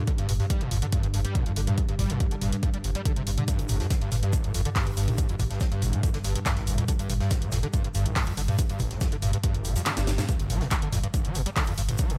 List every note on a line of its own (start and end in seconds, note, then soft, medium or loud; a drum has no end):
0.00 10.33 G2 medium
0.07 0.11 D3 loud
0.07 kick loud
0.07 closed hi-hat medium
0.18 0.28 G1 medium
0.18 0.27 G2 loud
0.18 closed hi-hat medium
0.29 0.39 G1 loud
0.29 0.32 G2 medium
0.29 open hi-hat loud
0.29 mid tom medium
0.40 0.45 G2 loud
0.40 open hi-hat medium
0.50 0.62 G3 medium
0.50 kick loud
0.50 closed hi-hat medium
0.61 0.71 G1 medium
0.61 0.70 A#2 medium
0.61 closed hi-hat medium
0.71 0.82 G1 loud
0.71 0.77 F2 medium
0.71 open hi-hat loud
0.71 mid tom medium
0.82 0.86 D3 loud
0.82 closed hi-hat medium
0.92 1.02 G2 loud
0.92 kick loud
0.92 closed hi-hat medium
1.03 1.13 G1 medium
1.03 1.07 G2 medium
1.03 closed hi-hat medium
1.14 1.25 G1 loud
1.14 1.20 G2 loud
1.14 open hi-hat loud
1.25 1.37 G3 medium
1.25 closed hi-hat medium
1.35 1.44 A#2 medium
1.35 kick loud
1.35 closed hi-hat medium
1.46 1.56 G1 medium
1.46 1.52 F2 loud
1.46 closed hi-hat medium
1.56 1.67 G1 loud
1.56 1.60 D3 loud
1.56 open hi-hat loud
1.67 1.76 G2 loud
1.67 closed hi-hat medium
1.67 mid tom medium
1.78 1.81 G2 medium
1.78 kick loud
1.78 closed hi-hat medium
1.89 1.98 G1 medium
1.89 1.94 G2 loud
1.89 closed hi-hat soft
1.99 2.10 G1 loud
1.99 2.12 G3 medium
1.99 kick medium
1.99 open hi-hat loud
1.99 mid tom medium
2.10 2.19 A#2 medium
2.10 closed hi-hat soft
2.20 2.26 F2 loud
2.20 kick loud
2.20 closed hi-hat medium
2.31 2.41 G1 medium
2.31 2.35 D3 loud
2.31 closed hi-hat medium
2.41 2.52 G1 medium
2.41 2.51 G2 loud
2.41 open hi-hat loud
2.41 mid tom medium
2.52 2.56 G2 medium
2.52 closed hi-hat medium
2.63 2.69 G2 loud
2.63 kick loud
2.63 closed hi-hat medium
2.74 2.84 G1 medium
2.74 2.77 G3 medium
2.74 closed hi-hat medium
2.84 2.95 G1 medium
2.84 2.90 G1 loud
2.84 open hi-hat loud
2.95 3.01 G3 loud
2.95 closed hi-hat medium
3.05 3.12 D3 medium
3.05 kick loud
3.05 closed hi-hat medium
3.16 3.26 G1 medium
3.16 3.22 C3 medium
3.16 closed hi-hat medium
3.27 3.37 G1 loud
3.27 3.30 G2 medium
3.27 open hi-hat loud
3.38 3.43 D3 medium
3.38 closed hi-hat medium
3.38 mid tom loud
3.48 3.60 G2 loud
3.48 kick loud
3.48 closed hi-hat medium
3.48 shaker medium
3.59 3.71 G1 medium
3.59 3.69 G1 medium
3.59 closed hi-hat soft
3.68 3.80 G1 loud
3.68 3.78 A#2 medium
3.68 open hi-hat loud
3.68 mid tom medium
3.68 shaker medium
3.80 3.86 F2 loud
3.80 snare soft
3.80 open hi-hat medium
3.90 3.94 D3 loud
3.90 kick loud
3.90 snare loud
3.90 closed hi-hat medium
3.90 shaker medium
4.01 4.11 G1 medium
4.01 4.10 G2 loud
4.01 closed hi-hat soft
4.11 4.22 G1 loud
4.11 4.15 G2 medium
4.11 snare soft
4.11 open hi-hat loud
4.11 mid tom medium
4.11 shaker medium
4.23 4.34 G2 medium
4.23 closed hi-hat soft
4.33 4.45 G1 medium
4.33 kick loud
4.33 closed hi-hat medium
4.33 shaker medium
4.44 4.54 G1 medium
4.44 4.52 A#2 medium
4.44 closed hi-hat soft
4.54 4.65 G1 loud
4.54 4.60 F2 loud
4.54 open hi-hat loud
4.54 shaker medium
4.65 4.69 D3 loud
4.65 closed hi-hat medium
4.75 4.85 G2 loud
4.75 kick loud
4.75 snare loud
4.75 clap loud
4.75 closed hi-hat medium
4.75 open hi-hat medium
4.87 4.96 G1 medium
4.87 4.90 G2 medium
4.87 closed hi-hat soft
4.97 5.08 G1 medium
4.97 5.09 G2 loud
4.97 open hi-hat loud
4.97 shaker medium
5.08 5.20 G1 medium
5.08 closed hi-hat medium
5.08 mid tom loud
5.18 5.27 A#2 medium
5.18 kick loud
5.18 closed hi-hat medium
5.18 shaker medium
5.28 5.39 G1 medium
5.28 5.35 F2 loud
5.28 closed hi-hat soft
5.39 5.50 G1 loud
5.39 5.43 D3 loud
5.39 kick medium
5.39 open hi-hat loud
5.39 mid tom medium
5.39 shaker medium
5.50 5.59 G2 loud
5.50 snare soft
5.50 closed hi-hat medium
5.60 5.64 G2 medium
5.60 kick loud
5.60 snare loud
5.60 closed hi-hat medium
5.60 shaker medium
5.72 5.82 G1 medium
5.72 5.84 G2 loud
5.72 closed hi-hat soft
5.82 5.93 G1 loud
5.82 5.94 G1 medium
5.82 open hi-hat loud
5.82 mid tom medium
5.82 shaker medium
5.93 6.02 A#2 medium
5.93 closed hi-hat soft
6.03 6.09 F2 loud
6.03 kick loud
6.03 closed hi-hat medium
6.03 shaker medium
6.13 6.24 G1 medium
6.13 6.18 D3 loud
6.13 snare soft
6.13 closed hi-hat medium
6.24 6.35 G1 loud
6.24 6.33 G2 loud
6.24 open hi-hat loud
6.24 shaker medium
6.35 6.39 G2 medium
6.35 closed hi-hat medium
6.46 6.58 G2 loud
6.46 kick loud
6.46 snare loud
6.46 clap loud
6.46 closed hi-hat medium
6.46 shaker medium
6.56 6.68 G1 medium
6.56 6.67 G1 medium
6.56 snare medium
6.56 closed hi-hat soft
6.67 6.78 G1 loud
6.67 6.76 A#2 medium
6.67 open hi-hat loud
6.67 shaker medium
6.78 6.84 F2 loud
6.78 closed hi-hat medium
6.78 mid tom loud
6.88 6.92 D3 loud
6.88 kick loud
6.88 closed hi-hat medium
6.88 shaker medium
6.99 7.09 G1 medium
6.99 7.08 G2 loud
6.99 closed hi-hat medium
6.99 closed hi-hat soft
7.09 7.20 G1 loud
7.09 7.13 G2 medium
7.09 open hi-hat loud
7.09 mid tom medium
7.09 shaker medium
7.20 7.32 G2 loud
7.20 snare soft
7.20 open hi-hat medium
7.31 7.43 G1 medium
7.31 kick loud
7.31 snare loud
7.31 closed hi-hat medium
7.31 shaker medium
7.42 7.52 G1 medium
7.42 7.50 A#2 medium
7.42 closed hi-hat medium
7.52 7.63 G1 loud
7.52 7.58 F2 medium
7.52 snare loud
7.52 open hi-hat loud
7.52 mid tom loud
7.52 shaker medium
7.63 7.67 D3 loud
7.63 closed hi-hat soft
7.73 7.82 G2 loud
7.73 kick loud
7.73 closed hi-hat medium
7.73 shaker medium
7.84 7.94 G1 medium
7.84 7.88 G2 medium
7.84 closed hi-hat medium
7.94 8.06 G1 loud
7.94 8.07 G2 loud
7.94 open hi-hat loud
7.94 shaker medium
8.05 8.17 G1 medium
8.05 closed hi-hat medium
8.16 8.25 A#2 medium
8.16 kick loud
8.16 snare loud
8.16 clap loud
8.16 closed hi-hat medium
8.16 open hi-hat medium
8.27 8.37 G1 medium
8.27 8.33 F2 loud
8.27 closed hi-hat soft
8.37 8.48 G1 loud
8.37 8.41 D3 loud
8.37 open hi-hat loud
8.37 shaker medium
8.48 8.57 G2 loud
8.48 closed hi-hat medium
8.48 mid tom medium
8.59 8.62 G2 medium
8.59 kick loud
8.59 closed hi-hat medium
8.59 shaker medium
8.69 8.79 G1 medium
8.69 8.81 G2 loud
8.69 closed hi-hat soft
8.69 closed hi-hat medium
8.79 8.91 G1 loud
8.79 8.92 G1 medium
8.79 kick medium
8.79 open hi-hat loud
8.79 mid tom medium
8.79 shaker medium
8.91 8.99 A#2 medium
8.91 snare soft
8.91 closed hi-hat medium
9.01 9.07 F2 loud
9.01 kick loud
9.01 snare loud
9.01 closed hi-hat medium
9.01 shaker medium
9.12 9.22 G1 medium
9.12 9.15 D3 loud
9.12 closed hi-hat medium
9.22 9.33 G1 loud
9.22 9.31 G2 loud
9.22 open hi-hat loud
9.22 mid tom medium
9.22 shaker medium
9.33 9.37 G2 medium
9.33 closed hi-hat medium
9.44 9.56 G2 loud
9.44 kick loud
9.44 closed hi-hat loud
9.44 swell medium
9.54 9.64 G1 medium
9.54 9.67 G1 medium
9.54 closed hi-hat medium
9.65 9.76 G1 loud
9.65 9.74 A#2 medium
9.65 open hi-hat loud
9.65 shaker medium
9.76 9.82 F2 loud
9.76 open hi-hat medium
9.76 shaker medium
9.86 9.90 D3 loud
9.86 snare medium
9.86 clap loud
9.86 closed hi-hat medium
9.86 closed hi-hat soft
9.97 10.07 G1 medium
9.97 10.06 G2 loud
9.97 snare medium
9.97 closed hi-hat medium
9.97 shaker medium
10.07 10.18 G1 loud
10.07 10.11 G2 medium
10.07 snare medium
10.07 snare loud
10.07 open hi-hat loud
10.07 shaker medium
10.18 10.24 G2 loud
10.18 snare medium
10.18 snare loud
10.18 closed hi-hat medium
10.18 mid tom loud
10.18 shaker medium
10.29 10.32 G2 medium
10.29 kick loud
10.29 closed hi-hat loud
10.29 impact medium
10.29 shaker medium
10.40 10.49 G1 medium
10.40 10.52 G1 medium
10.40 closed hi-hat medium
10.40 closed hi-hat soft
10.50 10.61 G1 loud
10.50 10.62 G3 medium
10.50 open hi-hat loud
10.50 mid tom medium
10.50 shaker medium
10.61 10.67 A#2 medium
10.61 snare soft
10.61 open hi-hat medium
10.71 10.75 G3 medium
10.71 kick loud
10.71 snare loud
10.71 clap loud
10.71 closed hi-hat medium
10.71 shaker medium
10.82 10.92 G1 medium
10.82 10.88 D3 medium
10.82 closed hi-hat medium
10.93 11.03 G1 loud
10.93 10.99 F2 loud
10.93 snare medium
10.93 open hi-hat loud
10.93 mid tom medium
10.93 shaker medium
11.03 11.07 G2 medium
11.03 closed hi-hat medium
11.14 11.26 G1 medium
11.14 kick loud
11.14 closed hi-hat loud
11.14 shaker medium
11.25 11.35 G1 medium
11.25 11.37 G3 medium
11.25 closed hi-hat medium
11.35 11.46 G1 loud
11.35 11.41 A#2 medium
11.35 open hi-hat loud
11.35 shaker medium
11.46 11.50 G3 medium
11.46 closed hi-hat medium
11.56 11.62 D3 medium
11.56 kick loud
11.56 snare loud
11.56 clap loud
11.56 closed hi-hat medium
11.56 open hi-hat medium
11.67 11.77 G1 medium
11.67 11.73 F2 loud
11.67 closed hi-hat medium
11.78 11.88 G1 loud
11.78 11.81 G2 medium
11.78 open hi-hat loud
11.78 shaker medium
11.89 12.01 G1 medium
11.89 closed hi-hat medium
11.89 mid tom medium
11.98 12.12 G3 medium
11.98 kick loud
11.98 closed hi-hat loud
11.98 shaker medium
12.10 12.18 G1 medium
12.10 12.16 A#2 medium
12.10 closed hi-hat soft
12.10 closed hi-hat medium